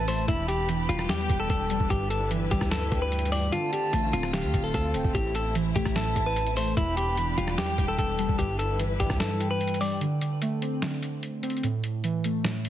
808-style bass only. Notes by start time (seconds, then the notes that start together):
Already playing: A1
0.28 E1
0.89 E1
1.29 E1
1.50 E1
1.70 F1
1.80 E1
1.90 G1
2.51 G1
2.61 D2
2.92 D2
3.93 A1
4.13 D1
4.44 D2
4.54 D1
4.74 D2
4.94 C1
5.04 D1
5.15 A1
5.76 A1
5.86 A1
6.16 A1
6.77 E1
7.38 E1
7.78 E1
7.99 E1
8.19 F1
8.29 E1
8.39 G1
9.00 G1
9.10 D2